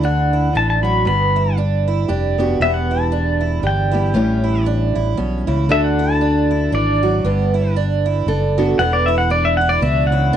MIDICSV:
0, 0, Header, 1, 5, 480
1, 0, Start_track
1, 0, Tempo, 514580
1, 996, Time_signature, 3, 2, 24, 8
1, 9672, End_track
2, 0, Start_track
2, 0, Title_t, "Pedal steel guitar"
2, 0, Program_c, 0, 26
2, 46, Note_on_c, 0, 78, 67
2, 507, Note_off_c, 0, 78, 0
2, 531, Note_on_c, 0, 81, 70
2, 642, Note_off_c, 0, 81, 0
2, 653, Note_on_c, 0, 81, 79
2, 770, Note_off_c, 0, 81, 0
2, 774, Note_on_c, 0, 83, 61
2, 980, Note_off_c, 0, 83, 0
2, 1001, Note_on_c, 0, 83, 81
2, 1464, Note_off_c, 0, 83, 0
2, 2447, Note_on_c, 0, 76, 72
2, 2555, Note_on_c, 0, 78, 86
2, 2576, Note_off_c, 0, 76, 0
2, 2802, Note_off_c, 0, 78, 0
2, 2802, Note_on_c, 0, 81, 86
2, 3372, Note_off_c, 0, 81, 0
2, 3421, Note_on_c, 0, 79, 85
2, 4340, Note_off_c, 0, 79, 0
2, 5332, Note_on_c, 0, 76, 84
2, 5450, Note_on_c, 0, 78, 90
2, 5459, Note_off_c, 0, 76, 0
2, 5705, Note_off_c, 0, 78, 0
2, 5705, Note_on_c, 0, 81, 71
2, 6264, Note_off_c, 0, 81, 0
2, 6294, Note_on_c, 0, 74, 86
2, 7216, Note_off_c, 0, 74, 0
2, 8200, Note_on_c, 0, 78, 87
2, 8331, Note_on_c, 0, 74, 87
2, 8333, Note_off_c, 0, 78, 0
2, 8451, Note_on_c, 0, 76, 84
2, 8467, Note_off_c, 0, 74, 0
2, 8557, Note_off_c, 0, 76, 0
2, 8561, Note_on_c, 0, 78, 75
2, 8666, Note_off_c, 0, 78, 0
2, 8687, Note_on_c, 0, 74, 75
2, 8815, Note_on_c, 0, 76, 76
2, 8816, Note_off_c, 0, 74, 0
2, 8924, Note_off_c, 0, 76, 0
2, 8928, Note_on_c, 0, 78, 74
2, 9038, Note_off_c, 0, 78, 0
2, 9040, Note_on_c, 0, 74, 100
2, 9146, Note_off_c, 0, 74, 0
2, 9167, Note_on_c, 0, 76, 73
2, 9389, Note_off_c, 0, 76, 0
2, 9393, Note_on_c, 0, 78, 91
2, 9672, Note_off_c, 0, 78, 0
2, 9672, End_track
3, 0, Start_track
3, 0, Title_t, "Twelve-string acoustic guitar"
3, 0, Program_c, 1, 25
3, 32, Note_on_c, 1, 62, 76
3, 306, Note_off_c, 1, 62, 0
3, 308, Note_on_c, 1, 64, 68
3, 510, Note_off_c, 1, 64, 0
3, 514, Note_on_c, 1, 62, 74
3, 787, Note_off_c, 1, 62, 0
3, 788, Note_on_c, 1, 66, 70
3, 989, Note_off_c, 1, 66, 0
3, 998, Note_on_c, 1, 59, 82
3, 1269, Note_off_c, 1, 59, 0
3, 1269, Note_on_c, 1, 64, 64
3, 1470, Note_off_c, 1, 64, 0
3, 1470, Note_on_c, 1, 62, 71
3, 1745, Note_off_c, 1, 62, 0
3, 1751, Note_on_c, 1, 64, 70
3, 1950, Note_on_c, 1, 62, 76
3, 1951, Note_off_c, 1, 64, 0
3, 2225, Note_off_c, 1, 62, 0
3, 2237, Note_on_c, 1, 66, 71
3, 2434, Note_off_c, 1, 66, 0
3, 2437, Note_on_c, 1, 59, 81
3, 2708, Note_off_c, 1, 59, 0
3, 2714, Note_on_c, 1, 64, 64
3, 2909, Note_on_c, 1, 62, 72
3, 2912, Note_off_c, 1, 64, 0
3, 3177, Note_on_c, 1, 64, 65
3, 3184, Note_off_c, 1, 62, 0
3, 3383, Note_off_c, 1, 64, 0
3, 3384, Note_on_c, 1, 62, 69
3, 3652, Note_on_c, 1, 64, 74
3, 3662, Note_off_c, 1, 62, 0
3, 3861, Note_off_c, 1, 64, 0
3, 3865, Note_on_c, 1, 61, 83
3, 4139, Note_on_c, 1, 64, 70
3, 4142, Note_off_c, 1, 61, 0
3, 4345, Note_off_c, 1, 64, 0
3, 4349, Note_on_c, 1, 62, 79
3, 4621, Note_on_c, 1, 64, 76
3, 4624, Note_off_c, 1, 62, 0
3, 4825, Note_off_c, 1, 64, 0
3, 4827, Note_on_c, 1, 61, 73
3, 5103, Note_off_c, 1, 61, 0
3, 5105, Note_on_c, 1, 64, 79
3, 5307, Note_off_c, 1, 64, 0
3, 5309, Note_on_c, 1, 62, 81
3, 5584, Note_off_c, 1, 62, 0
3, 5588, Note_on_c, 1, 64, 77
3, 5789, Note_off_c, 1, 64, 0
3, 5793, Note_on_c, 1, 62, 75
3, 6066, Note_off_c, 1, 62, 0
3, 6070, Note_on_c, 1, 64, 71
3, 6270, Note_off_c, 1, 64, 0
3, 6272, Note_on_c, 1, 62, 75
3, 6546, Note_off_c, 1, 62, 0
3, 6555, Note_on_c, 1, 66, 73
3, 6753, Note_off_c, 1, 66, 0
3, 6759, Note_on_c, 1, 59, 86
3, 7029, Note_off_c, 1, 59, 0
3, 7033, Note_on_c, 1, 64, 70
3, 7232, Note_off_c, 1, 64, 0
3, 7242, Note_on_c, 1, 62, 85
3, 7511, Note_off_c, 1, 62, 0
3, 7515, Note_on_c, 1, 64, 82
3, 7713, Note_off_c, 1, 64, 0
3, 7723, Note_on_c, 1, 62, 86
3, 7991, Note_off_c, 1, 62, 0
3, 8001, Note_on_c, 1, 66, 74
3, 8196, Note_off_c, 1, 66, 0
3, 8202, Note_on_c, 1, 59, 89
3, 8471, Note_off_c, 1, 59, 0
3, 8471, Note_on_c, 1, 64, 74
3, 8671, Note_off_c, 1, 64, 0
3, 8678, Note_on_c, 1, 62, 84
3, 8949, Note_off_c, 1, 62, 0
3, 8966, Note_on_c, 1, 64, 74
3, 9158, Note_off_c, 1, 64, 0
3, 9162, Note_on_c, 1, 62, 87
3, 9431, Note_off_c, 1, 62, 0
3, 9440, Note_on_c, 1, 64, 82
3, 9636, Note_off_c, 1, 64, 0
3, 9637, Note_on_c, 1, 62, 91
3, 9672, Note_off_c, 1, 62, 0
3, 9672, End_track
4, 0, Start_track
4, 0, Title_t, "Nylon-string guitar"
4, 0, Program_c, 2, 24
4, 0, Note_on_c, 2, 50, 72
4, 490, Note_off_c, 2, 50, 0
4, 494, Note_on_c, 2, 52, 54
4, 770, Note_off_c, 2, 52, 0
4, 774, Note_on_c, 2, 54, 50
4, 980, Note_on_c, 2, 43, 70
4, 986, Note_off_c, 2, 54, 0
4, 1944, Note_on_c, 2, 67, 51
4, 2221, Note_on_c, 2, 59, 51
4, 2227, Note_on_c, 2, 62, 50
4, 2231, Note_off_c, 2, 67, 0
4, 2235, Note_on_c, 2, 67, 59
4, 2404, Note_off_c, 2, 43, 0
4, 2406, Note_off_c, 2, 59, 0
4, 2408, Note_off_c, 2, 62, 0
4, 2434, Note_on_c, 2, 40, 72
4, 3387, Note_off_c, 2, 67, 0
4, 3390, Note_on_c, 2, 67, 50
4, 3668, Note_off_c, 2, 67, 0
4, 3668, Note_on_c, 2, 55, 52
4, 3676, Note_on_c, 2, 59, 51
4, 3680, Note_on_c, 2, 67, 56
4, 3855, Note_off_c, 2, 67, 0
4, 3861, Note_on_c, 2, 45, 73
4, 3866, Note_off_c, 2, 55, 0
4, 3869, Note_on_c, 2, 52, 59
4, 3875, Note_off_c, 2, 40, 0
4, 3877, Note_off_c, 2, 59, 0
4, 3877, Note_on_c, 2, 55, 61
4, 3884, Note_on_c, 2, 61, 54
4, 3889, Note_on_c, 2, 67, 64
4, 4822, Note_off_c, 2, 45, 0
4, 4826, Note_on_c, 2, 47, 51
4, 5105, Note_off_c, 2, 47, 0
4, 5109, Note_on_c, 2, 49, 53
4, 5288, Note_off_c, 2, 52, 0
4, 5296, Note_off_c, 2, 61, 0
4, 5297, Note_off_c, 2, 67, 0
4, 5308, Note_on_c, 2, 50, 70
4, 5312, Note_off_c, 2, 55, 0
4, 5314, Note_off_c, 2, 49, 0
4, 5316, Note_on_c, 2, 62, 57
4, 5321, Note_on_c, 2, 66, 59
4, 5326, Note_on_c, 2, 69, 68
4, 6272, Note_off_c, 2, 50, 0
4, 6281, Note_on_c, 2, 52, 47
4, 6556, Note_off_c, 2, 52, 0
4, 6561, Note_on_c, 2, 54, 55
4, 6732, Note_off_c, 2, 62, 0
4, 6733, Note_off_c, 2, 66, 0
4, 6737, Note_off_c, 2, 69, 0
4, 6760, Note_off_c, 2, 54, 0
4, 6770, Note_on_c, 2, 43, 71
4, 7726, Note_on_c, 2, 69, 58
4, 7998, Note_off_c, 2, 69, 0
4, 8000, Note_on_c, 2, 59, 49
4, 8006, Note_on_c, 2, 62, 50
4, 8014, Note_on_c, 2, 69, 56
4, 8175, Note_off_c, 2, 59, 0
4, 8178, Note_off_c, 2, 43, 0
4, 8178, Note_off_c, 2, 62, 0
4, 8182, Note_off_c, 2, 69, 0
4, 8211, Note_on_c, 2, 40, 77
4, 9153, Note_on_c, 2, 47, 58
4, 9432, Note_off_c, 2, 47, 0
4, 9437, Note_on_c, 2, 49, 59
4, 9638, Note_off_c, 2, 49, 0
4, 9644, Note_off_c, 2, 40, 0
4, 9644, Note_on_c, 2, 50, 68
4, 9672, Note_off_c, 2, 50, 0
4, 9672, End_track
5, 0, Start_track
5, 0, Title_t, "Fingered electric bass"
5, 0, Program_c, 3, 33
5, 0, Note_on_c, 3, 38, 95
5, 474, Note_off_c, 3, 38, 0
5, 512, Note_on_c, 3, 33, 91
5, 970, Note_off_c, 3, 33, 0
5, 998, Note_on_c, 3, 31, 89
5, 1919, Note_off_c, 3, 31, 0
5, 1955, Note_on_c, 3, 29, 77
5, 2411, Note_off_c, 3, 29, 0
5, 2426, Note_on_c, 3, 28, 90
5, 3354, Note_off_c, 3, 28, 0
5, 3388, Note_on_c, 3, 31, 96
5, 3848, Note_off_c, 3, 31, 0
5, 3862, Note_on_c, 3, 33, 97
5, 4589, Note_off_c, 3, 33, 0
5, 4627, Note_on_c, 3, 33, 79
5, 4812, Note_off_c, 3, 33, 0
5, 4837, Note_on_c, 3, 35, 61
5, 5086, Note_off_c, 3, 35, 0
5, 5111, Note_on_c, 3, 37, 82
5, 5294, Note_off_c, 3, 37, 0
5, 5305, Note_on_c, 3, 38, 84
5, 6233, Note_off_c, 3, 38, 0
5, 6269, Note_on_c, 3, 32, 83
5, 6728, Note_off_c, 3, 32, 0
5, 6757, Note_on_c, 3, 31, 98
5, 7679, Note_off_c, 3, 31, 0
5, 7711, Note_on_c, 3, 30, 87
5, 8169, Note_off_c, 3, 30, 0
5, 8198, Note_on_c, 3, 28, 97
5, 9120, Note_off_c, 3, 28, 0
5, 9161, Note_on_c, 3, 37, 98
5, 9615, Note_off_c, 3, 37, 0
5, 9641, Note_on_c, 3, 38, 103
5, 9672, Note_off_c, 3, 38, 0
5, 9672, End_track
0, 0, End_of_file